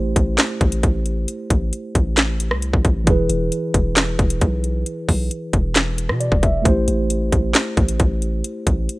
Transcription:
Already playing: A1 A3 E4 G4 C5
0.16 A1, kick, closed hi-hat
0.38 snare, clap, closed hi-hat
0.61 A1, kick, closed hi-hat
0.72 closed hi-hat
0.83 A1, kick, closed hi-hat
1.06 closed hi-hat
1.28 closed hi-hat
1.50 A1, kick, closed hi-hat
1.73 closed hi-hat
1.95 A1, kick, closed hi-hat
2.17 snare, clap, closed hi-hat
2.40 closed hi-hat
2.51 C2, cross-stick
2.62 closed hi-hat
2.73 A1, kick
2.85 A1, kick, closed hi-hat
3.04 E1 E3 E4, kick, closed hi-hat
3.08 G#4 B4
3.29 E1, closed hi-hat
3.52 closed hi-hat
3.74 E1, kick, closed hi-hat
3.97 snare, clap, closed hi-hat
4.19 E1, kick, closed hi-hat
4.30 closed hi-hat
4.41 B1, kick, closed hi-hat
4.64 closed hi-hat
4.86 closed hi-hat
5.09 B1, kick, open hi-hat
5.31 closed hi-hat
5.53 E1, kick, closed hi-hat
5.76 snare, clap, closed hi-hat
5.98 closed hi-hat
6.09 B2, cross-stick
6.20 D5, closed hi-hat
6.32 E1, kick
6.43 E1 E5, kick, closed hi-hat
6.62 A1 A3 E4, kick, closed hi-hat
6.66 G4 C5
6.88 A1, closed hi-hat
7.10 closed hi-hat
7.32 A1, kick, closed hi-hat
7.55 snare, clap, closed hi-hat
7.77 A1, kick, closed hi-hat
7.88 closed hi-hat
8.00 A1, kick, closed hi-hat
8.22 closed hi-hat
8.44 closed hi-hat
8.67 A1, kick, closed hi-hat
8.89 closed hi-hat

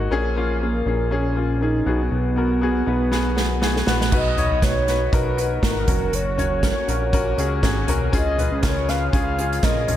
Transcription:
Already playing: D#3 A#3 D#4 F#4 G#4
0.11 A#1 A#2 A#3 C#4 G#4
0.36 A#3 C#4 F4
0.61 A#3 C#4 G#4
0.86 A#1 A#3 C#4 G#4
1.11 A#3 C#4 G#4
1.35 A#3 C#4 F4
1.61 A#3 C#4 D#4 G#4
1.86 B1 B2 B3 F#4 G#4
2.02 B3
2.12 B1
2.36 B3 F#4 A#4
2.61 B3 F#4 G#4
2.86 B1 B3 F#4 B4
3.12 B3 F#4 G#4, snare
3.36 B3 F#4 G#4, snare
3.61 B3 F#4 G#4, snare
3.76 snare
3.86 A#1 B3 F#4 B4, snare
4.01 snare
4.12 B1 B2 B3 D#4 F#4 B4 D#5, kick, crash
4.37 D#4 F#4 C#5, closed hi-hat, floor tom
4.52 B1
4.62 B1 D#4 F#4 B4 C#5, kick, snare, closed hi-hat
4.87 D#4 F#4 B4, snare, closed hi-hat
5.12 B1 D#4 F#4 A#4 B4, kick, closed hi-hat
5.37 D#4 F#4 B4, closed hi-hat
5.63 G#1 D#4 F#4 A#4, kick, snare, closed hi-hat
5.88 F#1 A#3 C#4 F#4 A#4, kick, closed hi-hat, floor tom
6.13 F#1 C#5, closed hi-hat
6.37 C#4 F#4 C#5, closed hi-hat, floor tom
6.63 C#4 F#4 A#4 C#5, kick, snare, closed hi-hat
6.88 A#1 C#4 F#4 A#4, closed hi-hat
7.13 C#4 F#4 A#4, kick, closed hi-hat
7.38 C#2 C#4 F#4 G#4, closed hi-hat
7.63 G#1 C#4 F#4 G#4, kick, snare, closed hi-hat
7.87 B1 C#4 F#4 A#4, closed hi-hat, floor tom
8.13 C#2 C#3 C#4 F4 G#4 D#5, kick, closed hi-hat
8.38 C#4 F4 B4, closed hi-hat, floor tom
8.52 C#2
8.62 C#2 C#4 F4 A#4 C#5, kick, snare, clap, closed hi-hat
8.88 C#4 F4 B4 F5, snare, closed hi-hat
9.13 C#2 C#4 F4 G#4 F5, kick, closed hi-hat
9.38 C#4 F4 G#4, closed hi-hat
9.53 closed hi-hat
9.63 A#1 C#4 F4 A#4 D#5, kick, snare, clap, closed hi-hat
9.88 A#1 C#4 F4 G#4, closed hi-hat, floor tom

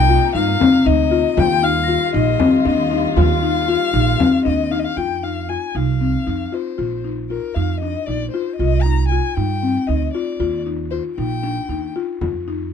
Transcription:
Already playing: C2 C3 A#3 D#4 G5
0.09 F4
0.35 G2 D#4 F5, frame drum
0.60 C4, frame drum
0.86 D2 D#4 D#5, frame drum
1.11 F4
1.37 D#2 D#3 G3 F4 G5, frame drum
1.63 D#4 F5 F6
1.84 A#6
1.88 F4, frame drum
2.00 C7
2.14 A#1 D#4 D#5, frame drum
2.40 C4, frame drum
2.65 D#2 D4 D#5, frame drum
2.91 D#4
3.16 D#2 F4 F5, frame drum
3.43 D#4
3.68 F4, frame drum
3.93 A#1 D#4
4.20 C4, frame drum
4.45 D#2 D4 D#5
4.71 D#4 F5, frame drum
4.79 D#5
4.84 F5
4.97 F2 F4 G5
5.23 D#4 F5
5.49 F4 G#5
5.75 C2 D#4 F5
6.01 C4
6.27 F2 D#4
6.52 F4 C5
6.78 A#1 F4
7.04 D#4
7.30 F4 A#4
7.55 F2 D#4 F5
7.80 D4 D#5
8.06 A#1 D#4 D5
8.31 F4 C5
8.56 C2 F4 D#5
8.82 D#4 A#5
9.08 F4 G#5
9.35 G2 D#4 G5
9.63 C4
9.87 D2 D#4 D#5
10.13 F4 D5
10.40 D#2 F4
10.66 D#4
10.91 F4 C5
11.17 A#1 D#4 G5
11.43 D4
11.69 D#2 D#4
11.96 F4
12.21 F2 F4, frame drum
12.48 D#4

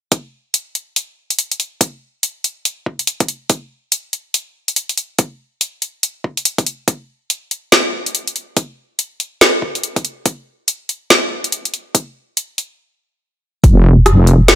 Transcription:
0.12 kick, closed hi-hat
0.54 closed hi-hat
0.75 closed hi-hat
0.96 closed hi-hat
1.30 closed hi-hat
1.39 closed hi-hat
1.52 closed hi-hat
1.60 closed hi-hat
1.81 kick, closed hi-hat
2.23 closed hi-hat
2.44 closed hi-hat
2.65 closed hi-hat
2.86 kick
2.99 closed hi-hat
3.07 closed hi-hat
3.20 kick, closed hi-hat
3.28 closed hi-hat
3.50 kick, closed hi-hat
3.92 closed hi-hat
4.13 closed hi-hat
4.34 closed hi-hat
4.68 closed hi-hat
4.76 closed hi-hat
4.89 closed hi-hat
4.97 closed hi-hat
5.19 kick, closed hi-hat
5.61 closed hi-hat
5.82 closed hi-hat
6.03 closed hi-hat
6.24 kick
6.37 closed hi-hat
6.45 closed hi-hat
6.58 kick, closed hi-hat
6.66 closed hi-hat
6.88 kick, closed hi-hat
7.30 closed hi-hat
7.51 closed hi-hat
7.72 snare, closed hi-hat
8.06 closed hi-hat
8.15 closed hi-hat
8.27 closed hi-hat
8.36 closed hi-hat
8.57 kick, closed hi-hat
8.99 closed hi-hat
9.20 closed hi-hat
9.41 snare, closed hi-hat
9.62 kick
9.75 closed hi-hat
9.83 closed hi-hat
9.96 kick, closed hi-hat
10.05 closed hi-hat
10.26 kick, closed hi-hat
10.68 closed hi-hat
10.89 closed hi-hat
11.10 snare, closed hi-hat
11.44 closed hi-hat
11.52 closed hi-hat
11.65 closed hi-hat
11.74 closed hi-hat
11.95 kick, closed hi-hat
12.37 closed hi-hat
12.58 closed hi-hat
13.64 F1, kick, closed hi-hat
14.06 cross-stick, closed hi-hat
14.27 closed hi-hat
14.48 snare, closed hi-hat

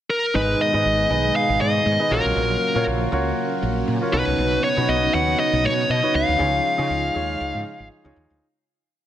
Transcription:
0.10 A#4
0.34 G#1 G#2 B2 D#3 G#3 D#4 G#4 B4 D#5
0.61 D#5
0.73 G#2 D#4 G#4 B4 D#5
0.85 G#1
1.10 B1 D#4 G#4 B4 D#5
1.36 F5
1.49 G#1
1.60 G#2 D#5
1.86 G#2
1.99 D#4 G#4 B4 D#5
2.11 A#1 A#2 C#3 F#3 A#3 C#4 F4 F#4 A#4 C#5 F5
2.25 B1
2.36 A#1
2.75 A#2 F4 F#4 A#4 C#5
2.87 A#1
3.12 C#2 F4 F#4 A#4 C#5
3.62 A#1
3.88 A#2
4.01 F4 F#4 A#4 C#5
4.12 B1 B2 B3 D#4 F#4 B4 C#5
4.27 C2
4.38 B1
4.64 C#5
4.77 B2 D#4 F#4 B4 C#5
4.88 B1 D#5
5.13 D#2 D#4 F#4 B4 C#5 F#5
5.39 D#5
5.53 B1
5.64 B2 C#5
5.89 B2 D#5
6.02 D#4 F#4 B4 C#5
6.14 C#2 F5
6.28 D2
6.39 C#2 C#3 F3 G#3 D#4 F4 G#4 C#5
6.78 C#3 D#4 F4 G#4 C#5
6.90 C#2
7.15 D#2 D#4 F4 G#4 C#5
7.40 C#2
7.54 G#2
7.79 G#1
8.04 C#2 D#4 F4 G#4 C#5
8.16 D#2
8.30 D2

